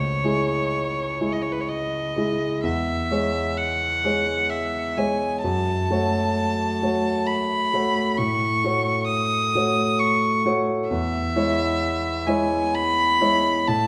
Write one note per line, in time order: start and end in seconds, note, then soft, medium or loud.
0.00 0.23 C#2 soft
0.00 1.34 C#5 medium
0.24 1.17 G#3 soft
0.24 1.17 E4 soft
0.24 1.17 G#4 soft
1.21 2.12 G#3 soft
1.21 2.12 E4 soft
1.21 2.12 G#4 soft
1.32 1.44 D#5 soft
1.42 1.53 C#5 soft
1.52 1.62 B4 soft
1.61 1.70 C#5 soft
1.69 2.64 D#5 soft
2.16 2.60 G#3 soft
2.16 2.60 E4 soft
2.16 2.60 G#4 soft
2.63 3.09 E2 soft
2.63 3.59 E5 soft
3.11 4.00 G#3 soft
3.11 4.00 G#4 soft
3.11 4.01 C#5 soft
3.58 4.51 F#5 medium
4.04 4.93 G#3 soft
4.04 4.94 G#4 soft
4.04 4.94 C#5 soft
4.50 4.98 E5 soft
4.97 5.40 G#3 soft
4.97 5.40 G#4 soft
4.97 5.40 C#5 soft
4.97 5.43 G#5 soft
5.43 5.89 F#2 soft
5.43 7.29 A5 medium
5.91 6.79 A3 soft
5.91 6.79 F#4 soft
5.91 6.79 C#5 soft
6.83 7.70 A3 soft
6.83 7.70 F#4 soft
6.83 7.70 C#5 soft
7.27 8.19 B5 medium
7.74 8.15 A3 soft
7.74 8.15 F#4 soft
7.74 8.15 C#5 soft
8.18 8.62 A2 soft
8.18 9.07 C#6 medium
8.64 9.51 A3 soft
8.64 9.51 F#4 soft
8.64 9.51 C#5 soft
9.07 10.01 D#6 medium
9.55 10.41 A3 soft
9.55 10.41 F#4 soft
9.55 10.42 C#5 soft
9.99 10.45 C#6 medium
10.46 10.87 A3 soft
10.46 10.87 F#4 soft
10.46 10.87 C#5 soft
10.89 11.35 E2 soft
10.89 12.29 E5 medium
11.36 12.24 G#3 soft
11.36 12.24 E4 soft
11.36 12.24 C#5 soft
12.27 13.16 G#3 soft
12.27 13.17 E4 soft
12.27 13.17 C#5 soft
12.27 12.76 G#5 medium
12.75 13.69 B5 medium
13.21 13.63 G#3 soft
13.21 13.64 E4 soft
13.21 13.64 C#5 soft
13.68 13.87 A2 soft
13.68 13.87 A5 medium